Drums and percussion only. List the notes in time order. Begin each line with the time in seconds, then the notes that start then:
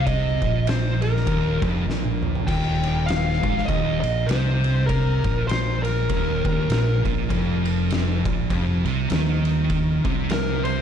0.07 kick, ride
0.42 kick, ride
0.67 snare, ride
1.02 ride
1.16 snare
1.27 kick, ride
1.62 kick, ride
1.90 snare
2.05 high tom
2.23 mid tom
2.35 floor tom
2.48 kick, crash, ride
2.83 ride
3.08 snare, ride
3.43 kick, ride
3.58 snare
3.68 kick, ride
4.03 ride
4.29 snare, ride
4.64 ride
4.89 kick, ride
5.24 kick, ride
5.49 snare, ride
5.85 ride
6.09 kick, ride
6.45 kick, ride
6.70 snare, ride
7.05 kick, ride
7.30 kick, ride
7.65 ride
7.90 snare, ride
8.25 kick, ride
8.50 kick, ride
8.85 ride
9.10 snare, ride
9.45 ride
9.70 kick, ride
10.05 kick, ride
10.30 snare, ride
10.65 ride